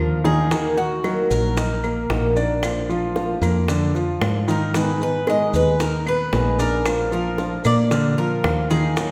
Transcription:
Already playing: F3 F4 A#4
0.00 D#2 A#3 D4 F4
0.24 D#3 A#3 D4 D#4 F4 G#4, low bongo
0.50 D#3 A#3 D#4 F#4 A#4, high bongo, maracas
0.77 D#4 F#4 A#4, maracas
1.04 D#3 F#3 A#3 D#4 F#4 A#4, high bongo, claves, maracas
1.30 A#1 D#4 F#4 A#4, maracas
1.57 D#4 D#5, muted nylon-string guitar stroke, high bongo, maracas
1.84 A#3 A#4, claves, maracas
2.10 A#1 D#3 A#3 D#4 F#4 A#4, high bongo, low bongo, maracas
2.36 D4 D#4 F#4 A#4 D5, maracas
2.63 F3 A#3 D4 F4, high bongo, claves, maracas
2.89 F3 A#3 D4 F4, maracas
3.15 F3 A#3 D4 F4, high bongo, maracas
3.41 F2 A#3 D4 F4 A#4, high bongo, claves, maracas
3.68 D3 D4, muted nylon-string guitar stroke, high bongo, maracas
3.95 F3 F4, high bongo, maracas
4.21 G#2 F3 A#3 D4 F4, high bongo, low bongo, claves, maracas
4.48 D#3 A#3 D4 D#4 F4 A#4, high bongo, maracas
4.74 D#3 G#3 B3 D#4 G#4 B4, high bongo, maracas
5.01 B3 D#4 G#4 B4, maracas
5.27 D#3 G#3 B3 D#4 G#4 D#5, high bongo, claves, maracas
5.53 D#2 B3 D#4 G#4 B4, maracas
5.80 D#4 A#4 D#5, muted nylon-string guitar stroke, high bongo, maracas
6.06 B3 B4, claves, maracas
6.32 A#1 D#3 G#3 B3 D#4 G#4, high bongo, low bongo, maracas
6.58 B3 D4 D#4 G#4 A#4 D5, maracas
6.85 F3 A#3 D4 F4, high bongo, claves, maracas
7.11 F3 A#3 D4 F4 A#4, maracas
7.38 F3 A#3 D4 F4, high bongo, maracas
7.65 A#2 A#3 D4 F4 A#4 D5, high bongo, claves, maracas
7.90 D3 D4 A#4, muted nylon-string guitar stroke, high bongo, maracas
8.18 F3 F4 A#4, high bongo, maracas
8.43 D#2 F3 A#3 D4 F4, high bongo, low bongo, claves, maracas
8.70 D#3 A#3 D4 D#4 F4 G#4, high bongo, maracas
8.96 D#3 F#3 A#3 D#4 F4, high bongo, maracas

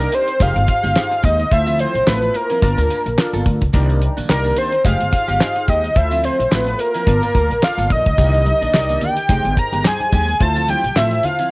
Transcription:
Already playing: D4 D#4 G4 A#4
0.00 D#4 A#4 D5, closed hi-hat
0.12 D#4 A#4 C5 D5, closed hi-hat
0.28 muted clean electric guitar stroke, closed hi-hat
0.40 F1 G#3 D#4 G4 G#4 A#4 F5, kick, closed hi-hat
0.47 C5
0.56 G1, muted clean electric guitar stroke, closed hi-hat
0.68 muted clean electric guitar stroke, kick, closed hi-hat
0.83 G1 G#3 D#4 G4, closed hi-hat
0.96 D#4 G4 G#4 C5, snare, clap
1.11 muted clean electric guitar stroke, closed hi-hat
1.23 D#2 G#3 D#4 G4 D#5, kick, closed hi-hat
1.39 muted clean electric guitar stroke, closed hi-hat
1.51 D2 E4 F4 A4 C5 E5, muted clean electric guitar stroke, kick, closed hi-hat
1.67 F3 C4 F4, closed hi-hat
1.79 F3 C4 E4 C5, closed hi-hat
1.95 A#1, muted clean electric guitar stroke, closed hi-hat
2.07 A1 F3 C4 E4 F4 A4 B4 C5, snare, clap
2.22 muted clean electric guitar stroke, closed hi-hat
2.34 A#4, muted clean electric guitar stroke, closed hi-hat
2.50 F3 C4 E4, closed hi-hat
2.62 G1 D4 F4 A#4 A5, muted clean electric guitar stroke, kick, closed hi-hat
2.78 D2 A#3 F4 A#4, closed hi-hat
2.90 A#3 F4 A#4, closed hi-hat
3.06 A#1, muted clean electric guitar stroke, closed hi-hat
3.18 D4 F4 A4 A#4, muted clean electric guitar stroke, snare, clap
3.33 G1 A#3 F4 A4, closed hi-hat
3.46 D2, muted clean electric guitar stroke, kick, closed hi-hat
3.61 C#2, muted clean electric guitar stroke, kick, closed hi-hat
3.73 C2 D#3 A#3 D4 D#4 G4 A#4, kick, closed hi-hat
3.90 closed hi-hat
4.01 muted clean electric guitar stroke, closed hi-hat
4.17 A#1 D#3 A#3 D4, closed hi-hat
4.29 C2 D4 D#4 G4 A#4, muted clean electric guitar stroke, snare, clap
4.44 D#3 A#3 D4, closed hi-hat
4.56 D#3 A#3 D4 C5, closed hi-hat
4.72 muted clean electric guitar stroke, closed hi-hat
4.84 F1 G#3 D#4 G4 G#4 C5 F5, kick, closed hi-hat
5.00 G1, muted clean electric guitar stroke, closed hi-hat
5.12 muted clean electric guitar stroke, kick, closed hi-hat
5.28 G1 G#3 D#4 G4, closed hi-hat
5.40 D#4 G4 G#4 C5, snare, clap
5.56 muted clean electric guitar stroke, closed hi-hat
5.68 D#2 G#3 D#4 G4 D#5, kick, closed hi-hat
5.84 muted clean electric guitar stroke, closed hi-hat
5.95 D2 E4 F4 A4 C5 E5, muted clean electric guitar stroke, kick, closed hi-hat
6.11 F3 C4 F4, closed hi-hat
6.23 F3 C4 E4 C5, closed hi-hat
6.39 A#1, muted clean electric guitar stroke, closed hi-hat
6.51 A1 F3 C4 E4 F4 A4 B4 C5, snare, clap
6.67 muted clean electric guitar stroke, closed hi-hat
6.79 A#4, muted clean electric guitar stroke, closed hi-hat
6.94 F3 C4 E4, closed hi-hat
7.06 G1 F4 A#4 D5 A5, muted clean electric guitar stroke, kick, closed hi-hat
7.22 A#3 F4 A#4, closed hi-hat
7.35 D2 A#3 F4 A#4, kick, closed hi-hat
7.50 A#1, muted clean electric guitar stroke, closed hi-hat
7.62 F4 A4 A#4 D5 F5, muted clean electric guitar stroke, snare, clap
7.78 G1 A#3 F4 A4, closed hi-hat
7.90 A#1 D#5, muted clean electric guitar stroke, kick, closed hi-hat
8.06 C#2, muted clean electric guitar stroke, kick, closed hi-hat
8.18 C2 D#3 A#3 D4 D#4 G4 A#4 D#5, kick, closed hi-hat, low conga
8.34 closed hi-hat
8.46 muted clean electric guitar stroke, closed hi-hat, high conga
8.61 A#1 D#3 A#3 D4, closed hi-hat
8.73 C2 D#4 G4 A#4 D5, snare, clap, muted conga
8.89 D#3 A#3 D4, closed hi-hat
9.01 D#3 A#3 D4 G5, closed hi-hat, low conga
9.17 muted clean electric guitar stroke, closed hi-hat
9.29 F1 G#3 D#4 G4 G#4 C5, kick, closed hi-hat, muted conga
9.45 G1, muted clean electric guitar stroke, closed hi-hat
9.56 A#5, muted clean electric guitar stroke, kick, closed hi-hat, muted conga
9.72 G1 G#3 D#4 G4, closed hi-hat
9.84 D#4 G4 G#4 C5 G#5, muted clean electric guitar stroke, snare, clap, muted conga, high conga
10.00 muted clean electric guitar stroke, closed hi-hat, high conga
10.12 D#2 G#3 D#4 G4 G#5, kick, closed hi-hat, high conga
10.28 muted clean electric guitar stroke, closed hi-hat
10.40 D2 E4 F4 A4 C5 A5, muted clean electric guitar stroke, kick, closed hi-hat, muted conga, low conga
10.56 F3 C4 F4, closed hi-hat
10.68 F3 C4 E4 G5, closed hi-hat, high conga
10.84 A#1, muted clean electric guitar stroke, closed hi-hat
10.96 A1 F3 C4 E4 F4 A4 C5 E5, snare, clap
11.11 muted clean electric guitar stroke, closed hi-hat
11.23 F5, muted clean electric guitar stroke, closed hi-hat, low conga
11.39 F3 C4 E4, closed hi-hat

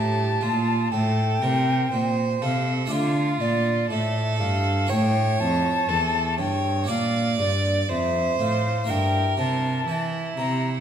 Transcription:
Already playing: A2 F4 G4 C5 A5
0.41 A#2 F4
0.92 A2 A4 G5
1.42 C3 A#4
1.92 A#2 C5
2.41 C3 A4 F5
2.86 A3 F4 D5
2.90 D3 F4 F5
3.40 A#2 D5
3.90 A2 A4 E5
4.39 G2 F5
4.87 A2 E4 C#5 G5
4.91 A2
5.40 F2 A5
5.89 E2 A4
6.38 G2 C#5 G5
6.84 A#3 D4 D5
6.88 A#2 F5
7.39 G2 D5
7.89 F2 C5 E5
8.39 A2 F5
8.84 G2 A#3 E4 A#4
8.89 G2 G5
9.38 C3 A5
9.87 E3 E4
10.37 C3 A#5

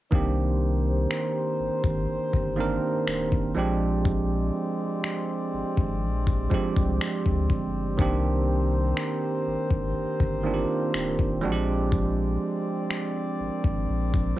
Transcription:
0.10 C2 D#3 A#3 C4 D4 G4 A#4 C5, kick
0.15 G4
1.11 finger snap
1.60 G#1
1.84 G#1, kick
2.09 G1
2.34 G1, kick
2.56 D#3 A#3 C4 D4
2.61 A#4
3.08 D#1, finger snap
3.32 kick
3.55 A#1 F3 G#3 C4 D4 G4 D5
3.59 G4
4.05 kick
5.04 finger snap
5.54 G#1
5.77 G#1, kick
6.03 A#1
6.27 kick
6.50 F3 G#3 C4 D4, kick
6.54 G4
6.76 C2, kick
7.01 finger snap
7.26 D2, kick
7.50 G1, kick
7.97 C2 D#3 A#3 C4 D4 A#4 C5, kick
8.02 G4
8.97 finger snap
9.47 G#1
9.71 G#1, kick
9.96 G1
10.20 G1, kick
10.43 D#3 A#3 C4 D4
10.47 F4
10.54 G4
10.94 D#1, finger snap
11.19 kick
11.41 A#1 F3 G#3 C4 D4 D5
11.45 F#4
11.52 G4
11.92 kick
12.91 finger snap
13.40 G#1 A#4
13.64 G#1, kick
13.90 A#1
14.14 kick

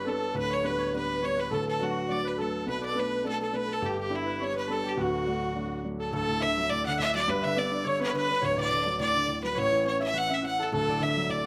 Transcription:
Already playing: G1 G2 E4 G4 B4 C#5
0.04 G3 B3 D4 A4
0.09 A4
0.34 D1 D2 B4
0.50 C#5
0.63 G3 B3 D4 B4
0.77 C#5
0.93 G3 B3 D4 B4
1.22 G3 B3 D4 C#5
1.37 B4
1.50 D1 D2 A4
1.54 A4
1.66 A4
1.80 F#3 A3 D4 F#4
2.08 F#3 A3 D4 D5
2.24 B4
2.37 F#3 A3 D4 A4
2.66 B1 B2 B4
2.82 D5
2.90 A4
2.95 A3 B3 D4 B4
2.99 B4
3.24 A3 B3 D4 A4
3.40 A4
3.52 A3 B3 D4 B4
3.68 A4
3.73 A4
3.82 G1 G2 G4
3.97 G4
4.10 G3 B3 D4 E4
4.15 E4
4.26 B4
4.39 G3 B3 D4 C#5
4.53 B4
4.58 B4
4.67 G3 B3 D4 A4
4.72 A4
4.84 G4
4.89 G4
4.97 D1 D2 F#4
5.01 F#4
5.26 F#3 A3 D4
5.55 F#3 A3 D4
5.84 F#3 A3 D4
5.98 A4
6.11 D1 D2 A4
6.28 A2
6.40 D3 E5
6.57 F#3
6.69 A2 D5
6.84 D3 F#5
6.98 A2 E5
7.12 F#3 D5
7.28 G1 G2 B4
7.42 D3 E5
7.56 B3 D5
7.72 D4
7.84 D3 C#5
7.99 B3 B4
8.12 D3 B4
8.16 B4
8.28 D4 B4
8.41 D1 D2 C#5
8.56 A2 D5
8.60 D5
8.70 D3
8.86 F#3
8.98 A2 D5
9.14 D3
9.28 A2
9.42 F#3 B4
9.55 A1 A2 C#5
9.72 E3
9.85 C#4 C#5
10.00 E4 E5
10.14 E3 F#5
10.18 F#5
10.29 C#4 E5
10.34 E5
10.42 E3 F#5
10.59 E4 A4
10.71 D1 D2 A4
10.88 A2 D5
11.00 D3 E5
11.16 F#3
11.29 A2 D5

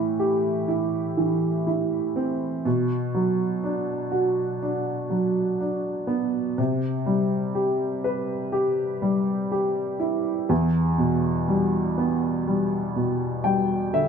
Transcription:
Already playing: A2 E3 E4
0.20 G4
0.68 E4
1.17 E3
1.67 E4
2.16 C4
2.65 B2
3.14 F#3
3.64 D4
4.11 F#4
4.62 D4
5.10 F#3
5.61 D4
6.07 B3
6.58 C3
7.06 G3
7.55 G4
8.04 B4
8.52 G4
9.02 G3
9.52 G4
10.00 E4
10.49 E2
10.98 B2
11.48 G3
11.98 B3
12.47 G3
12.96 B2
13.44 G3 G5
13.93 D3 E5

